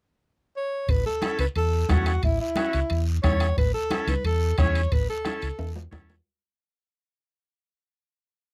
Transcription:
0.57 alto saxophone C#5
0.88 fingered electric bass A1, alto saxophone B4, bombo low, high timbale, long guiro
1.05 alto saxophone A4, high conga
1.22 transistor combo organ C#4 E4 A4, bombo rim, high conga, high timbale, short guiro
1.39 fingered electric bass C#2, alto saxophone B4, high timbale, short guiro
1.56 fingered electric bass E2, alto saxophone A4, high conga, high timbale, long guiro
1.89 fingered electric bass E2, transistor combo organ C#4 E4 A4, alto saxophone F#4, bombo low, bombo rim, high conga, high timbale, low timbale, short guiro
2.06 bombo rim, high timbale, short guiro
2.23 fingered electric bass A1, alto saxophone E4, bombo low, high timbale, long guiro
2.39 alto saxophone E4, high conga
2.56 transistor combo organ C#4 E4 F#4, bombo rim, high conga, high timbale, short guiro
2.73 fingered electric bass C#2, high timbale, short guiro
2.90 fingered electric bass E2, high conga, high timbale, long guiro
3.23 fingered electric bass E2, transistor combo organ C#4 E4 A4, alto saxophone C#5, bombo low, bombo rim, high conga, high timbale, short guiro
3.40 bombo rim, high timbale, short guiro
3.57 fingered electric bass A1, alto saxophone B4, bombo low, high timbale, long guiro
3.74 alto saxophone A4, high conga
3.91 transistor combo organ C#4 E4 A4, bombo rim, high conga, high timbale, short guiro
4.07 fingered electric bass C#2, alto saxophone B4, high conga, high timbale, short guiro
4.24 fingered electric bass E2, alto saxophone A4, high timbale, long guiro
4.58 fingered electric bass E2, transistor combo organ C#4 E4 G#4, alto saxophone C#5, bombo low, bombo rim, high conga, high timbale, short guiro
4.75 high timbale, short guiro
4.92 fingered electric bass A1, alto saxophone B4, bombo low, high timbale, long guiro
5.09 alto saxophone A4, high conga
5.24 transistor combo organ C#4 E4 A4, bombo rim, high conga, high timbale, short guiro
5.42 fingered electric bass C#2, high timbale, short guiro
5.59 fingered electric bass E2, high conga, high timbale, long guiro
5.76 low timbale
5.91 fingered electric bass E2, transistor combo organ C#4 E4 A4, bombo low, bombo rim, high conga, low timbale, short guiro
6.09 low timbale, short guiro

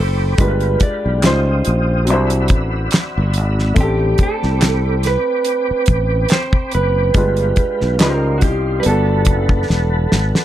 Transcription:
Already playing: upright piano A3 D4 G4 C5, tonewheel organ C5 G5 B5 D6
0.00 fretless electric bass F#1, clean electric guitar A4
0.38 fretless electric bass G1, upright piano G#3 D4 F4 G4, tonewheel organ G#3 F5, clean electric guitar B4, kick, closed hi-hat
0.42 upright piano A#4
0.48 upright piano B4
0.60 closed hi-hat
0.80 clean electric guitar D5, kick, closed hi-hat
1.06 fretless electric bass B1
1.22 fretless electric bass C#2, upright piano G3 C#4 D#4 F4, tonewheel organ C5 D#6, clean electric guitar C5, snare, clap, closed hi-hat
1.27 upright piano C5
1.65 fretless electric bass A#1, closed hi-hat
2.05 upright piano F#3 C4, tonewheel organ D5 F#5 B5 E6, closed hi-hat
2.09 fretless electric bass C2, upright piano D4 E4
2.13 upright piano C5
2.30 closed hi-hat
2.48 fretless electric bass A1, kick, closed hi-hat
2.91 snare, clap, closed hi-hat
3.18 fretless electric bass G1
3.33 fretless electric bass G#1, closed hi-hat
3.59 snare
3.74 fretless electric bass A1, upright piano A3 C4 D4, tonewheel organ C4 G5 B5 D6, kick, closed hi-hat
3.80 upright piano G4 A4, clean electric guitar G4
4.18 kick, closed hi-hat
4.23 clean electric guitar A4
4.43 fretless electric bass C2, snare
4.61 snare, clap, closed hi-hat
5.03 clean electric guitar B4, snare, closed hi-hat
5.44 closed hi-hat
5.71 muted fretless electric bass stroke
5.86 fretless electric bass A1, kick, closed hi-hat
6.29 clean electric guitar C5, snare, clap, closed hi-hat
6.53 kick
6.71 fretless electric bass F#1, clean electric guitar B4, closed hi-hat
7.14 fretless electric bass G1, upright piano G#3 D4 F4 G4, tonewheel organ G#3 F5, kick, closed hi-hat
7.18 upright piano B4
7.37 closed hi-hat
7.56 kick, closed hi-hat
7.81 fretless electric bass B1, snare
7.99 fretless electric bass C#2, upright piano G3 C#4 D#4 F4 B4, tonewheel organ G4 D#5 C6, clean electric guitar A#4, snare, clap, closed hi-hat
8.09 upright piano C5
8.38 clean electric guitar F#4, closed hi-hat
8.42 fretless electric bass C2, clean electric guitar G4, kick
8.80 upright piano G3 B3, clean electric guitar B4, closed hi-hat
8.85 fretless electric bass G1, upright piano D4 F#4, tonewheel organ A4 F#5 A5 B5, clean electric guitar A4
8.89 upright piano A4
9.25 fretless electric bass F#1, kick, closed hi-hat
9.49 kick
9.70 fretless electric bass E1, snare
10.12 fretless electric bass G#1, snare
10.35 snare

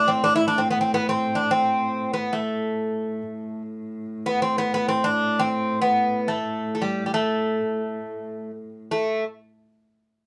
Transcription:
Already playing: cello A2
0.08 bouzouki C4
0.24 bouzouki D4
0.36 bouzouki E4
0.48 bouzouki D4
0.58 bouzouki C4
0.71 bouzouki B3
0.81 bouzouki C4
0.94 bouzouki B3
1.09 bouzouki C4
1.35 bouzouki D4
1.51 bouzouki C4
2.14 bouzouki B3
2.33 bouzouki A3
3.31 cello A2
4.26 bouzouki B3
4.42 bouzouki C4
4.58 bouzouki B3
4.74 bouzouki B3
4.89 bouzouki C4
5.04 bouzouki D4
5.39 bouzouki C4
5.82 bouzouki B3
6.28 bouzouki A3
6.75 bouzouki A3
6.82 bouzouki G3
7.06 bouzouki G3
7.14 bouzouki A3
8.91 bouzouki A3

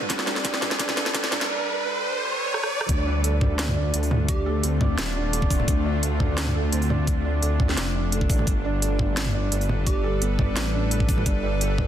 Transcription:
Already playing: synth drone G3 D4 A4 B4, felt piano D4 A4, riser
0.02 mid tom
0.10 detuned saw bass G1, felt piano D4, kick, snare, closed hi-hat
0.19 snare
0.27 felt piano D4, snare
0.36 snare
0.45 felt piano D4, kick, snare, closed hi-hat
0.54 snare
0.62 felt piano D4, snare, mid tom
0.71 snare
0.79 felt piano D4, kick, snare, closed hi-hat
0.89 snare, mid tom
0.97 felt piano D4, snare
1.06 snare
1.14 detuned saw bass G1, felt piano D4, kick, snare, closed hi-hat
1.24 snare
1.32 felt piano D4, snare, mid tom
1.41 snare
2.54 cross-stick
2.63 cross-stick
2.81 cross-stick
2.89 detuned saw bass D2, synth drone D3 A3 D4 F4, felt piano D4, kick, closed hi-hat
3.07 felt piano D4
3.24 felt piano A4, closed hi-hat
3.41 felt piano D4, kick, mid tom
3.59 snare, closed hi-hat
3.68 mid tom
3.76 felt piano D5
3.94 detuned saw bass D2, felt piano A4, closed hi-hat
4.03 open hi-hat
4.11 felt piano D4, mid tom
4.28 felt piano D4, digital synth lead G4, kick, closed hi-hat
4.46 felt piano A4
4.63 detuned saw bass D2, felt piano C4, closed hi-hat
4.81 felt piano D5, kick, mid tom
4.98 detuned saw bass D#1, snare, closed hi-hat
5.16 felt piano D4
5.33 felt piano A4, closed hi-hat
5.42 kick
5.50 felt piano D4, kick, open hi-hat
5.60 mid tom
5.68 detuned saw bass D2, felt piano D4, kick, closed hi-hat
5.85 felt piano D5
6.03 felt piano A4, closed hi-hat
6.20 felt piano D4, kick, mid tom
6.38 felt piano D4, snare, closed hi-hat
6.47 mid tom
6.55 felt piano A4
6.73 detuned saw bass D2, felt piano C4, closed hi-hat
6.82 open hi-hat
6.90 felt piano D5, mid tom
7.07 felt piano D4, kick, closed hi-hat
7.25 felt piano D4
7.42 detuned saw bass D2, felt piano A4, closed hi-hat
7.60 felt piano D4, kick, mid tom
7.69 snare
7.77 detuned saw bass F1, felt piano D4, snare, closed hi-hat
7.95 felt piano D5
8.12 felt piano A4, closed hi-hat
8.21 kick
8.30 detuned saw bass A1, felt piano D4, kick, open hi-hat
8.39 mid tom
8.47 detuned saw bass G1, synth drone G3 A4 B4, felt piano D4, kick, closed hi-hat
8.65 felt piano D4
8.82 felt piano A4, closed hi-hat
8.99 felt piano D4, kick, mid tom
9.17 snare, closed hi-hat
9.26 mid tom
9.34 felt piano D5
9.52 detuned saw bass G1, felt piano A4, closed hi-hat
9.61 open hi-hat
9.69 felt piano D4, mid tom
9.87 felt piano D4, digital synth lead G4, kick, closed hi-hat
10.04 felt piano A4
10.21 detuned saw bass G1, felt piano B3, closed hi-hat
10.39 felt piano D5, kick, mid tom
10.56 detuned saw bass A1, snare, closed hi-hat
10.74 felt piano D4
10.91 felt piano A4, closed hi-hat
11.00 kick
11.09 felt piano D4, kick, open hi-hat
11.18 mid tom
11.26 detuned saw bass G1, felt piano D4, kick, closed hi-hat
11.44 felt piano D5
11.61 felt piano A4, closed hi-hat
11.78 felt piano D4, kick, mid tom

